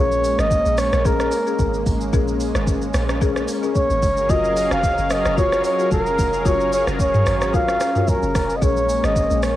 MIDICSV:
0, 0, Header, 1, 6, 480
1, 0, Start_track
1, 0, Key_signature, -5, "minor"
1, 0, Tempo, 540541
1, 1893, Time_signature, 4, 2, 24, 8
1, 8492, End_track
2, 0, Start_track
2, 0, Title_t, "Muted trumpet"
2, 0, Program_c, 0, 59
2, 0, Note_on_c, 0, 73, 109
2, 354, Note_on_c, 0, 75, 111
2, 368, Note_off_c, 0, 73, 0
2, 702, Note_on_c, 0, 73, 100
2, 715, Note_off_c, 0, 75, 0
2, 941, Note_on_c, 0, 70, 91
2, 955, Note_off_c, 0, 73, 0
2, 1657, Note_off_c, 0, 70, 0
2, 3341, Note_on_c, 0, 73, 105
2, 3820, Note_on_c, 0, 75, 118
2, 3833, Note_off_c, 0, 73, 0
2, 4189, Note_off_c, 0, 75, 0
2, 4193, Note_on_c, 0, 77, 120
2, 4541, Note_on_c, 0, 75, 107
2, 4554, Note_off_c, 0, 77, 0
2, 4774, Note_off_c, 0, 75, 0
2, 4779, Note_on_c, 0, 73, 111
2, 5000, Note_off_c, 0, 73, 0
2, 5020, Note_on_c, 0, 73, 105
2, 5240, Note_off_c, 0, 73, 0
2, 5261, Note_on_c, 0, 70, 102
2, 5704, Note_off_c, 0, 70, 0
2, 5743, Note_on_c, 0, 73, 105
2, 5961, Note_off_c, 0, 73, 0
2, 5981, Note_on_c, 0, 73, 98
2, 6087, Note_off_c, 0, 73, 0
2, 6222, Note_on_c, 0, 73, 103
2, 6665, Note_off_c, 0, 73, 0
2, 6703, Note_on_c, 0, 77, 110
2, 7182, Note_on_c, 0, 70, 94
2, 7195, Note_off_c, 0, 77, 0
2, 7604, Note_on_c, 0, 75, 73
2, 7617, Note_off_c, 0, 70, 0
2, 7661, Note_on_c, 0, 73, 105
2, 7674, Note_off_c, 0, 75, 0
2, 8034, Note_on_c, 0, 75, 100
2, 8047, Note_off_c, 0, 73, 0
2, 8378, Note_off_c, 0, 75, 0
2, 8382, Note_on_c, 0, 73, 90
2, 8492, Note_off_c, 0, 73, 0
2, 8492, End_track
3, 0, Start_track
3, 0, Title_t, "Marimba"
3, 0, Program_c, 1, 12
3, 0, Note_on_c, 1, 61, 94
3, 0, Note_on_c, 1, 68, 85
3, 0, Note_on_c, 1, 70, 100
3, 417, Note_off_c, 1, 61, 0
3, 418, Note_off_c, 1, 68, 0
3, 420, Note_off_c, 1, 70, 0
3, 930, Note_on_c, 1, 61, 96
3, 933, Note_on_c, 1, 68, 88
3, 936, Note_on_c, 1, 70, 103
3, 1067, Note_off_c, 1, 61, 0
3, 1068, Note_off_c, 1, 68, 0
3, 1069, Note_off_c, 1, 70, 0
3, 1302, Note_on_c, 1, 61, 79
3, 1305, Note_on_c, 1, 68, 71
3, 1307, Note_on_c, 1, 70, 83
3, 1415, Note_off_c, 1, 61, 0
3, 1416, Note_off_c, 1, 68, 0
3, 1418, Note_off_c, 1, 70, 0
3, 1890, Note_on_c, 1, 61, 98
3, 1893, Note_on_c, 1, 68, 82
3, 1895, Note_on_c, 1, 70, 105
3, 2337, Note_off_c, 1, 61, 0
3, 2339, Note_off_c, 1, 68, 0
3, 2340, Note_off_c, 1, 70, 0
3, 2850, Note_on_c, 1, 61, 100
3, 2853, Note_on_c, 1, 68, 92
3, 2855, Note_on_c, 1, 70, 106
3, 2987, Note_off_c, 1, 61, 0
3, 2988, Note_off_c, 1, 68, 0
3, 2989, Note_off_c, 1, 70, 0
3, 3222, Note_on_c, 1, 61, 77
3, 3225, Note_on_c, 1, 68, 73
3, 3228, Note_on_c, 1, 70, 87
3, 3335, Note_off_c, 1, 61, 0
3, 3337, Note_off_c, 1, 68, 0
3, 3338, Note_off_c, 1, 70, 0
3, 3810, Note_on_c, 1, 65, 98
3, 3813, Note_on_c, 1, 66, 90
3, 3815, Note_on_c, 1, 70, 108
3, 4257, Note_off_c, 1, 65, 0
3, 4259, Note_off_c, 1, 66, 0
3, 4260, Note_off_c, 1, 70, 0
3, 4770, Note_on_c, 1, 65, 98
3, 4773, Note_on_c, 1, 66, 88
3, 4776, Note_on_c, 1, 70, 103
3, 4907, Note_off_c, 1, 65, 0
3, 4908, Note_off_c, 1, 66, 0
3, 4909, Note_off_c, 1, 70, 0
3, 5142, Note_on_c, 1, 65, 76
3, 5145, Note_on_c, 1, 66, 74
3, 5147, Note_on_c, 1, 70, 84
3, 5255, Note_off_c, 1, 65, 0
3, 5256, Note_off_c, 1, 66, 0
3, 5258, Note_off_c, 1, 70, 0
3, 5729, Note_on_c, 1, 65, 96
3, 5732, Note_on_c, 1, 66, 90
3, 5734, Note_on_c, 1, 70, 103
3, 6177, Note_off_c, 1, 65, 0
3, 6178, Note_off_c, 1, 66, 0
3, 6179, Note_off_c, 1, 70, 0
3, 6690, Note_on_c, 1, 65, 99
3, 6693, Note_on_c, 1, 66, 90
3, 6695, Note_on_c, 1, 70, 108
3, 6826, Note_off_c, 1, 65, 0
3, 6828, Note_off_c, 1, 66, 0
3, 6829, Note_off_c, 1, 70, 0
3, 7063, Note_on_c, 1, 65, 77
3, 7065, Note_on_c, 1, 66, 71
3, 7068, Note_on_c, 1, 70, 82
3, 7176, Note_off_c, 1, 65, 0
3, 7177, Note_off_c, 1, 66, 0
3, 7178, Note_off_c, 1, 70, 0
3, 7651, Note_on_c, 1, 61, 93
3, 7653, Note_on_c, 1, 68, 85
3, 7656, Note_on_c, 1, 70, 105
3, 8097, Note_off_c, 1, 61, 0
3, 8099, Note_off_c, 1, 68, 0
3, 8100, Note_off_c, 1, 70, 0
3, 8492, End_track
4, 0, Start_track
4, 0, Title_t, "Analog synth pad"
4, 0, Program_c, 2, 89
4, 0, Note_on_c, 2, 56, 83
4, 0, Note_on_c, 2, 58, 76
4, 0, Note_on_c, 2, 61, 87
4, 3538, Note_off_c, 2, 56, 0
4, 3538, Note_off_c, 2, 58, 0
4, 3573, Note_on_c, 2, 68, 72
4, 3573, Note_on_c, 2, 70, 86
4, 3573, Note_on_c, 2, 77, 74
4, 3574, Note_on_c, 2, 54, 77
4, 7618, Note_off_c, 2, 54, 0
4, 7618, Note_off_c, 2, 68, 0
4, 7618, Note_off_c, 2, 70, 0
4, 7618, Note_off_c, 2, 77, 0
4, 7655, Note_on_c, 2, 56, 79
4, 7655, Note_on_c, 2, 58, 74
4, 8492, Note_off_c, 2, 56, 0
4, 8492, Note_off_c, 2, 58, 0
4, 8492, Note_off_c, 2, 61, 0
4, 8492, End_track
5, 0, Start_track
5, 0, Title_t, "Log drum bass"
5, 0, Program_c, 3, 39
5, 0, Note_on_c, 3, 34, 109
5, 319, Note_off_c, 3, 34, 0
5, 344, Note_on_c, 3, 32, 95
5, 567, Note_off_c, 3, 32, 0
5, 584, Note_on_c, 3, 34, 93
5, 807, Note_off_c, 3, 34, 0
5, 825, Note_on_c, 3, 34, 104
5, 1148, Note_off_c, 3, 34, 0
5, 1414, Note_on_c, 3, 32, 99
5, 1637, Note_off_c, 3, 32, 0
5, 1655, Note_on_c, 3, 32, 96
5, 1877, Note_off_c, 3, 32, 0
5, 1893, Note_on_c, 3, 34, 97
5, 2238, Note_off_c, 3, 34, 0
5, 2264, Note_on_c, 3, 32, 88
5, 2588, Note_off_c, 3, 32, 0
5, 2612, Note_on_c, 3, 34, 94
5, 3058, Note_off_c, 3, 34, 0
5, 3465, Note_on_c, 3, 32, 103
5, 3565, Note_off_c, 3, 32, 0
5, 3575, Note_on_c, 3, 30, 103
5, 3797, Note_off_c, 3, 30, 0
5, 3813, Note_on_c, 3, 30, 112
5, 4159, Note_off_c, 3, 30, 0
5, 4185, Note_on_c, 3, 29, 85
5, 4408, Note_off_c, 3, 29, 0
5, 4425, Note_on_c, 3, 30, 96
5, 4648, Note_off_c, 3, 30, 0
5, 4665, Note_on_c, 3, 30, 98
5, 4988, Note_off_c, 3, 30, 0
5, 5254, Note_on_c, 3, 29, 100
5, 5476, Note_off_c, 3, 29, 0
5, 5496, Note_on_c, 3, 29, 101
5, 5717, Note_off_c, 3, 29, 0
5, 5733, Note_on_c, 3, 30, 108
5, 6078, Note_off_c, 3, 30, 0
5, 6105, Note_on_c, 3, 29, 91
5, 6428, Note_off_c, 3, 29, 0
5, 6453, Note_on_c, 3, 32, 86
5, 6899, Note_off_c, 3, 32, 0
5, 7306, Note_on_c, 3, 30, 100
5, 7406, Note_off_c, 3, 30, 0
5, 7416, Note_on_c, 3, 29, 93
5, 7638, Note_off_c, 3, 29, 0
5, 7654, Note_on_c, 3, 34, 110
5, 7999, Note_off_c, 3, 34, 0
5, 8027, Note_on_c, 3, 32, 95
5, 8249, Note_off_c, 3, 32, 0
5, 8266, Note_on_c, 3, 34, 94
5, 8489, Note_off_c, 3, 34, 0
5, 8492, End_track
6, 0, Start_track
6, 0, Title_t, "Drums"
6, 104, Note_on_c, 9, 82, 56
6, 193, Note_off_c, 9, 82, 0
6, 214, Note_on_c, 9, 46, 58
6, 214, Note_on_c, 9, 82, 98
6, 302, Note_off_c, 9, 46, 0
6, 302, Note_off_c, 9, 82, 0
6, 344, Note_on_c, 9, 37, 96
6, 346, Note_on_c, 9, 82, 60
6, 433, Note_off_c, 9, 37, 0
6, 434, Note_off_c, 9, 82, 0
6, 452, Note_on_c, 9, 36, 95
6, 453, Note_on_c, 9, 82, 87
6, 541, Note_off_c, 9, 36, 0
6, 542, Note_off_c, 9, 82, 0
6, 583, Note_on_c, 9, 82, 55
6, 672, Note_off_c, 9, 82, 0
6, 689, Note_on_c, 9, 46, 52
6, 689, Note_on_c, 9, 82, 86
6, 693, Note_on_c, 9, 37, 100
6, 778, Note_off_c, 9, 46, 0
6, 778, Note_off_c, 9, 82, 0
6, 782, Note_off_c, 9, 37, 0
6, 824, Note_on_c, 9, 82, 58
6, 826, Note_on_c, 9, 37, 102
6, 913, Note_off_c, 9, 82, 0
6, 915, Note_off_c, 9, 37, 0
6, 935, Note_on_c, 9, 36, 115
6, 935, Note_on_c, 9, 82, 83
6, 1024, Note_off_c, 9, 36, 0
6, 1024, Note_off_c, 9, 82, 0
6, 1064, Note_on_c, 9, 37, 91
6, 1065, Note_on_c, 9, 82, 55
6, 1153, Note_off_c, 9, 37, 0
6, 1154, Note_off_c, 9, 82, 0
6, 1169, Note_on_c, 9, 46, 61
6, 1169, Note_on_c, 9, 82, 108
6, 1257, Note_off_c, 9, 46, 0
6, 1257, Note_off_c, 9, 82, 0
6, 1305, Note_on_c, 9, 82, 51
6, 1393, Note_off_c, 9, 82, 0
6, 1412, Note_on_c, 9, 82, 80
6, 1414, Note_on_c, 9, 36, 95
6, 1500, Note_off_c, 9, 82, 0
6, 1503, Note_off_c, 9, 36, 0
6, 1544, Note_on_c, 9, 82, 53
6, 1633, Note_off_c, 9, 82, 0
6, 1654, Note_on_c, 9, 46, 53
6, 1654, Note_on_c, 9, 82, 91
6, 1655, Note_on_c, 9, 36, 92
6, 1743, Note_off_c, 9, 46, 0
6, 1743, Note_off_c, 9, 82, 0
6, 1744, Note_off_c, 9, 36, 0
6, 1783, Note_on_c, 9, 82, 61
6, 1872, Note_off_c, 9, 82, 0
6, 1893, Note_on_c, 9, 36, 127
6, 1893, Note_on_c, 9, 82, 86
6, 1982, Note_off_c, 9, 36, 0
6, 1982, Note_off_c, 9, 82, 0
6, 2024, Note_on_c, 9, 82, 55
6, 2113, Note_off_c, 9, 82, 0
6, 2134, Note_on_c, 9, 46, 58
6, 2134, Note_on_c, 9, 82, 96
6, 2223, Note_off_c, 9, 46, 0
6, 2223, Note_off_c, 9, 82, 0
6, 2264, Note_on_c, 9, 37, 96
6, 2266, Note_on_c, 9, 82, 62
6, 2353, Note_off_c, 9, 37, 0
6, 2355, Note_off_c, 9, 82, 0
6, 2372, Note_on_c, 9, 36, 93
6, 2374, Note_on_c, 9, 82, 90
6, 2461, Note_off_c, 9, 36, 0
6, 2463, Note_off_c, 9, 82, 0
6, 2502, Note_on_c, 9, 82, 54
6, 2591, Note_off_c, 9, 82, 0
6, 2609, Note_on_c, 9, 46, 48
6, 2609, Note_on_c, 9, 82, 89
6, 2613, Note_on_c, 9, 37, 105
6, 2698, Note_off_c, 9, 46, 0
6, 2698, Note_off_c, 9, 82, 0
6, 2702, Note_off_c, 9, 37, 0
6, 2744, Note_on_c, 9, 82, 60
6, 2746, Note_on_c, 9, 37, 104
6, 2832, Note_off_c, 9, 82, 0
6, 2835, Note_off_c, 9, 37, 0
6, 2855, Note_on_c, 9, 36, 115
6, 2855, Note_on_c, 9, 82, 80
6, 2943, Note_off_c, 9, 36, 0
6, 2944, Note_off_c, 9, 82, 0
6, 2985, Note_on_c, 9, 37, 91
6, 2986, Note_on_c, 9, 82, 58
6, 3074, Note_off_c, 9, 37, 0
6, 3074, Note_off_c, 9, 82, 0
6, 3090, Note_on_c, 9, 46, 60
6, 3090, Note_on_c, 9, 82, 104
6, 3179, Note_off_c, 9, 46, 0
6, 3179, Note_off_c, 9, 82, 0
6, 3225, Note_on_c, 9, 82, 52
6, 3314, Note_off_c, 9, 82, 0
6, 3332, Note_on_c, 9, 82, 75
6, 3334, Note_on_c, 9, 36, 97
6, 3421, Note_off_c, 9, 82, 0
6, 3423, Note_off_c, 9, 36, 0
6, 3465, Note_on_c, 9, 82, 53
6, 3554, Note_off_c, 9, 82, 0
6, 3575, Note_on_c, 9, 46, 53
6, 3575, Note_on_c, 9, 82, 90
6, 3576, Note_on_c, 9, 36, 93
6, 3664, Note_off_c, 9, 36, 0
6, 3664, Note_off_c, 9, 46, 0
6, 3664, Note_off_c, 9, 82, 0
6, 3704, Note_on_c, 9, 82, 64
6, 3793, Note_off_c, 9, 82, 0
6, 3813, Note_on_c, 9, 36, 124
6, 3814, Note_on_c, 9, 82, 88
6, 3902, Note_off_c, 9, 36, 0
6, 3903, Note_off_c, 9, 82, 0
6, 3945, Note_on_c, 9, 82, 57
6, 4034, Note_off_c, 9, 82, 0
6, 4055, Note_on_c, 9, 46, 58
6, 4055, Note_on_c, 9, 82, 99
6, 4143, Note_off_c, 9, 46, 0
6, 4143, Note_off_c, 9, 82, 0
6, 4185, Note_on_c, 9, 37, 96
6, 4186, Note_on_c, 9, 82, 60
6, 4273, Note_off_c, 9, 37, 0
6, 4275, Note_off_c, 9, 82, 0
6, 4292, Note_on_c, 9, 36, 91
6, 4294, Note_on_c, 9, 82, 87
6, 4381, Note_off_c, 9, 36, 0
6, 4383, Note_off_c, 9, 82, 0
6, 4423, Note_on_c, 9, 82, 56
6, 4512, Note_off_c, 9, 82, 0
6, 4530, Note_on_c, 9, 46, 51
6, 4530, Note_on_c, 9, 82, 86
6, 4533, Note_on_c, 9, 37, 107
6, 4618, Note_off_c, 9, 46, 0
6, 4618, Note_off_c, 9, 82, 0
6, 4622, Note_off_c, 9, 37, 0
6, 4664, Note_on_c, 9, 82, 60
6, 4666, Note_on_c, 9, 37, 100
6, 4753, Note_off_c, 9, 82, 0
6, 4755, Note_off_c, 9, 37, 0
6, 4775, Note_on_c, 9, 36, 119
6, 4776, Note_on_c, 9, 82, 83
6, 4864, Note_off_c, 9, 36, 0
6, 4865, Note_off_c, 9, 82, 0
6, 4905, Note_on_c, 9, 37, 95
6, 4906, Note_on_c, 9, 82, 57
6, 4994, Note_off_c, 9, 37, 0
6, 4994, Note_off_c, 9, 82, 0
6, 5009, Note_on_c, 9, 46, 58
6, 5009, Note_on_c, 9, 82, 105
6, 5098, Note_off_c, 9, 46, 0
6, 5098, Note_off_c, 9, 82, 0
6, 5144, Note_on_c, 9, 82, 52
6, 5233, Note_off_c, 9, 82, 0
6, 5252, Note_on_c, 9, 82, 80
6, 5254, Note_on_c, 9, 36, 98
6, 5341, Note_off_c, 9, 82, 0
6, 5343, Note_off_c, 9, 36, 0
6, 5385, Note_on_c, 9, 82, 52
6, 5474, Note_off_c, 9, 82, 0
6, 5495, Note_on_c, 9, 46, 53
6, 5495, Note_on_c, 9, 82, 91
6, 5496, Note_on_c, 9, 36, 88
6, 5584, Note_off_c, 9, 36, 0
6, 5584, Note_off_c, 9, 46, 0
6, 5584, Note_off_c, 9, 82, 0
6, 5624, Note_on_c, 9, 82, 63
6, 5713, Note_off_c, 9, 82, 0
6, 5733, Note_on_c, 9, 36, 119
6, 5733, Note_on_c, 9, 82, 89
6, 5822, Note_off_c, 9, 36, 0
6, 5822, Note_off_c, 9, 82, 0
6, 5864, Note_on_c, 9, 82, 53
6, 5953, Note_off_c, 9, 82, 0
6, 5974, Note_on_c, 9, 46, 57
6, 5974, Note_on_c, 9, 82, 101
6, 6063, Note_off_c, 9, 46, 0
6, 6063, Note_off_c, 9, 82, 0
6, 6104, Note_on_c, 9, 37, 94
6, 6105, Note_on_c, 9, 82, 57
6, 6193, Note_off_c, 9, 37, 0
6, 6194, Note_off_c, 9, 82, 0
6, 6212, Note_on_c, 9, 36, 95
6, 6214, Note_on_c, 9, 82, 92
6, 6301, Note_off_c, 9, 36, 0
6, 6302, Note_off_c, 9, 82, 0
6, 6343, Note_on_c, 9, 82, 53
6, 6344, Note_on_c, 9, 45, 95
6, 6431, Note_off_c, 9, 82, 0
6, 6433, Note_off_c, 9, 45, 0
6, 6449, Note_on_c, 9, 46, 50
6, 6449, Note_on_c, 9, 82, 83
6, 6453, Note_on_c, 9, 37, 107
6, 6538, Note_off_c, 9, 46, 0
6, 6538, Note_off_c, 9, 82, 0
6, 6542, Note_off_c, 9, 37, 0
6, 6584, Note_on_c, 9, 82, 61
6, 6586, Note_on_c, 9, 37, 100
6, 6672, Note_off_c, 9, 82, 0
6, 6675, Note_off_c, 9, 37, 0
6, 6694, Note_on_c, 9, 82, 79
6, 6695, Note_on_c, 9, 36, 118
6, 6783, Note_off_c, 9, 82, 0
6, 6784, Note_off_c, 9, 36, 0
6, 6823, Note_on_c, 9, 37, 89
6, 6824, Note_on_c, 9, 82, 57
6, 6912, Note_off_c, 9, 37, 0
6, 6913, Note_off_c, 9, 82, 0
6, 6929, Note_on_c, 9, 46, 59
6, 6929, Note_on_c, 9, 82, 102
6, 6933, Note_on_c, 9, 37, 87
6, 7018, Note_off_c, 9, 46, 0
6, 7018, Note_off_c, 9, 82, 0
6, 7022, Note_off_c, 9, 37, 0
6, 7064, Note_on_c, 9, 82, 51
6, 7065, Note_on_c, 9, 45, 67
6, 7153, Note_off_c, 9, 82, 0
6, 7154, Note_off_c, 9, 45, 0
6, 7172, Note_on_c, 9, 82, 79
6, 7175, Note_on_c, 9, 36, 98
6, 7261, Note_off_c, 9, 82, 0
6, 7264, Note_off_c, 9, 36, 0
6, 7305, Note_on_c, 9, 82, 54
6, 7394, Note_off_c, 9, 82, 0
6, 7415, Note_on_c, 9, 37, 94
6, 7416, Note_on_c, 9, 36, 89
6, 7416, Note_on_c, 9, 46, 54
6, 7416, Note_on_c, 9, 82, 90
6, 7504, Note_off_c, 9, 37, 0
6, 7504, Note_off_c, 9, 46, 0
6, 7504, Note_off_c, 9, 82, 0
6, 7505, Note_off_c, 9, 36, 0
6, 7545, Note_on_c, 9, 82, 62
6, 7634, Note_off_c, 9, 82, 0
6, 7654, Note_on_c, 9, 36, 122
6, 7655, Note_on_c, 9, 82, 86
6, 7743, Note_off_c, 9, 36, 0
6, 7744, Note_off_c, 9, 82, 0
6, 7786, Note_on_c, 9, 82, 54
6, 7875, Note_off_c, 9, 82, 0
6, 7896, Note_on_c, 9, 46, 57
6, 7896, Note_on_c, 9, 82, 100
6, 7985, Note_off_c, 9, 46, 0
6, 7985, Note_off_c, 9, 82, 0
6, 8026, Note_on_c, 9, 37, 95
6, 8028, Note_on_c, 9, 82, 62
6, 8115, Note_off_c, 9, 37, 0
6, 8116, Note_off_c, 9, 82, 0
6, 8134, Note_on_c, 9, 36, 92
6, 8136, Note_on_c, 9, 82, 90
6, 8222, Note_off_c, 9, 36, 0
6, 8224, Note_off_c, 9, 82, 0
6, 8264, Note_on_c, 9, 82, 57
6, 8353, Note_off_c, 9, 82, 0
6, 8371, Note_on_c, 9, 46, 50
6, 8371, Note_on_c, 9, 82, 84
6, 8375, Note_on_c, 9, 37, 98
6, 8460, Note_off_c, 9, 46, 0
6, 8460, Note_off_c, 9, 82, 0
6, 8464, Note_off_c, 9, 37, 0
6, 8492, End_track
0, 0, End_of_file